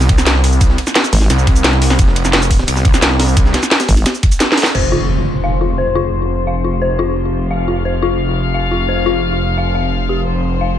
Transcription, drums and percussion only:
0.01 snare medium
0.01 shaker soft
0.09 kick loud
0.09 closed hi-hat medium
0.09 ride medium
0.18 snare soft
0.18 snare medium
0.18 shaker medium
0.26 snare loud
0.26 closed hi-hat medium
0.26 ride medium
0.26 shaker medium
0.44 open hi-hat medium
0.44 ride medium
0.52 shaker soft
0.61 kick loud
0.61 closed hi-hat medium
0.61 ride medium
0.61 shaker medium
0.70 snare medium
0.78 closed hi-hat medium
0.78 ride medium
0.87 snare soft
0.87 shaker medium
0.95 snare loud
0.95 closed hi-hat loud
0.95 ride medium
1.04 snare soft
1.04 shaker medium
1.13 open hi-hat medium
1.13 ride medium
1.13 shaker soft
1.21 snare medium
1.30 snare soft
1.30 closed hi-hat loud
1.30 ride medium
1.30 shaker medium
1.39 shaker soft
1.47 kick loud
1.47 closed hi-hat medium
1.47 ride medium
1.56 ride soft
1.56 shaker medium
1.64 snare loud
1.64 closed hi-hat medium
1.64 ride medium
1.64 shaker medium
1.73 ride soft
1.82 open hi-hat medium
1.90 snare soft
1.90 snare medium
1.90 shaker soft
1.99 kick loud
1.99 closed hi-hat loud
1.99 ride medium
1.99 shaker medium
2.07 snare medium
2.16 closed hi-hat medium
2.16 ride medium
2.25 snare soft
2.25 shaker medium
2.33 snare loud
2.33 closed hi-hat loud
2.33 ride medium
2.42 shaker medium
2.51 kick medium
2.51 open hi-hat medium
2.51 ride medium
2.59 snare medium
2.68 closed hi-hat loud
2.68 open hi-hat medium
2.68 shaker medium
2.76 snare medium
2.76 shaker soft
2.85 kick loud
2.85 closed hi-hat medium
2.85 ride medium
2.94 snare soft
2.94 snare medium
2.94 shaker medium
3.02 snare loud
3.02 closed hi-hat loud
3.02 ride medium
3.02 shaker medium
3.20 snare loud
3.20 open hi-hat medium
3.20 ride medium
3.28 shaker soft
3.37 kick loud
3.37 closed hi-hat loud
3.37 ride medium
3.37 shaker medium
3.45 snare medium
3.54 snare loud
3.54 snare soft
3.54 closed hi-hat medium
3.54 ride medium
3.54 shaker soft
3.63 snare soft
3.63 shaker medium
3.71 snare loud
3.71 closed hi-hat loud
3.71 ride medium
3.80 snare loud
3.80 ride medium
3.80 shaker medium
3.89 kick medium
3.89 open hi-hat medium
3.89 shaker soft
3.97 ride medium
4.06 snare loud
4.06 snare soft
4.06 closed hi-hat loud
4.06 ride medium
4.06 shaker medium
4.14 shaker soft
4.23 kick loud
4.23 closed hi-hat medium
4.23 ride medium
4.32 ride medium
4.32 shaker medium
4.40 snare loud
4.40 snare medium
4.40 closed hi-hat loud
4.40 ride medium
4.40 shaker medium
4.52 snare medium
4.58 snare loud
4.58 open hi-hat medium
4.58 ride medium
4.63 snare medium
4.66 snare loud
4.66 ride medium
4.66 shaker soft
4.75 crash medium

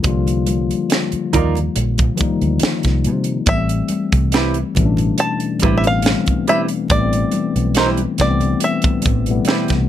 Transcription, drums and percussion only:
0.03 kick loud
0.03 closed hi-hat medium
0.03 muted conga soft
0.27 closed hi-hat soft
0.27 muted conga soft
0.47 closed hi-hat medium
0.47 high conga medium
0.71 closed hi-hat soft
0.90 snare loud
0.90 closed hi-hat medium
1.12 closed hi-hat soft
1.33 kick medium
1.33 closed hi-hat medium
1.33 low conga medium
1.55 closed hi-hat soft
1.55 low conga medium
1.76 closed hi-hat medium
1.76 muted conga soft
1.98 kick medium
1.98 closed hi-hat soft
1.98 muted conga soft
2.17 kick medium
2.17 closed hi-hat medium
2.17 high conga medium
2.41 closed hi-hat soft
2.60 snare loud
2.60 closed hi-hat medium
2.60 muted conga soft
2.60 high conga medium
2.83 kick medium
2.83 snare soft
2.83 closed hi-hat soft
2.83 muted conga soft
3.04 closed hi-hat medium
3.04 high conga soft
3.24 closed hi-hat soft
3.46 kick loud
3.46 closed hi-hat medium
3.46 muted conga soft
3.69 closed hi-hat medium
3.88 closed hi-hat medium
3.88 high conga medium
4.12 kick medium
4.12 closed hi-hat soft
4.32 snare loud
4.32 closed hi-hat medium
4.54 closed hi-hat soft
4.54 muted conga soft
4.75 kick medium
4.75 closed hi-hat medium
4.75 low conga medium
4.97 closed hi-hat soft
4.97 low conga medium
5.18 closed hi-hat medium
5.40 closed hi-hat soft
5.59 kick medium
5.59 closed hi-hat medium
5.59 high conga medium
5.84 closed hi-hat soft
6.02 snare loud
6.02 closed hi-hat medium
6.02 muted conga soft
6.02 high conga medium
6.26 kick medium
6.26 closed hi-hat soft
6.48 closed hi-hat medium
6.68 closed hi-hat soft
6.88 kick loud
6.88 closed hi-hat medium
6.88 muted conga soft
7.13 closed hi-hat soft
7.13 muted conga soft
7.32 closed hi-hat medium
7.32 high conga medium
7.56 closed hi-hat soft
7.75 snare loud
7.75 closed hi-hat medium
7.75 muted conga soft
7.97 closed hi-hat soft
7.97 muted conga soft
8.18 kick medium
8.18 snare soft
8.18 closed hi-hat medium
8.18 low conga medium
8.40 closed hi-hat soft
8.40 low conga medium
8.60 closed hi-hat medium
8.82 kick medium
8.82 closed hi-hat soft
9.02 kick medium
9.02 closed hi-hat medium
9.02 high conga medium
9.26 closed hi-hat soft
9.45 snare loud
9.45 closed hi-hat medium
9.45 high conga medium
9.68 kick medium
9.68 snare soft
9.68 closed hi-hat soft
9.68 muted conga soft

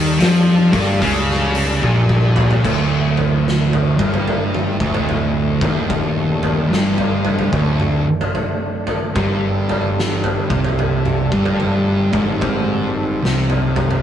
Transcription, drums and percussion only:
0.20 snare loud
0.20 open hi-hat medium
0.73 kick loud
0.73 open hi-hat medium
1.02 kick loud
1.02 open hi-hat medium
1.30 snare soft
1.55 open hi-hat medium
1.83 kick medium
2.09 kick medium
2.36 mid tom medium
2.51 floor tom medium
2.65 kick medium
2.65 floor tom medium
2.65 crash loud
3.17 floor tom medium
3.48 snare medium
3.73 floor tom medium
3.99 kick loud
3.99 floor tom medium
4.14 floor tom medium
4.28 floor tom medium
4.54 mid tom medium
4.80 kick loud
4.94 floor tom loud
5.09 floor tom medium
5.61 kick loud
5.61 floor tom medium
5.90 kick loud
5.90 floor tom medium
6.43 floor tom medium
6.73 snare medium
6.98 floor tom medium
7.25 floor tom medium
7.39 floor tom medium
7.53 kick loud
7.53 floor tom medium
7.80 mid tom medium
8.21 floor tom medium
8.35 floor tom medium
8.87 floor tom medium
9.16 kick loud
9.16 floor tom medium
9.69 floor tom medium
9.99 snare medium
10.24 floor tom medium
10.50 kick loud
10.50 floor tom medium
10.64 floor tom medium
10.79 floor tom medium
11.05 mid tom medium
11.32 kick loud
11.46 floor tom medium
11.60 floor tom medium
12.13 kick medium
12.13 floor tom medium
12.41 kick loud
12.41 floor tom medium
13.25 snare medium
13.50 floor tom medium
13.76 floor tom medium
13.76 mid tom medium
13.91 floor tom medium

